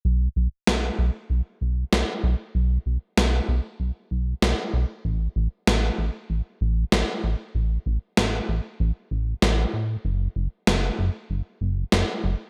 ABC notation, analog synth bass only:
X:1
M:4/4
L:1/8
Q:1/4=96
K:Amix
V:1 name="Analog synth bass" clef=bass
B,,, B,,, B,,, B,,, B,,, B,,, B,,, B,,, | B,,, B,,, B,,, B,,, B,,, B,,, B,,, B,,, | A,,, A,,, A,,, A,,, A,,, A,,, A,,, A,,, | A,,, A,,, A,,, A,,, A,,, A,,, A,,, A,, |
F,,, F,,, F,,, F,,, F,,, F,,, F,,, F,,, |]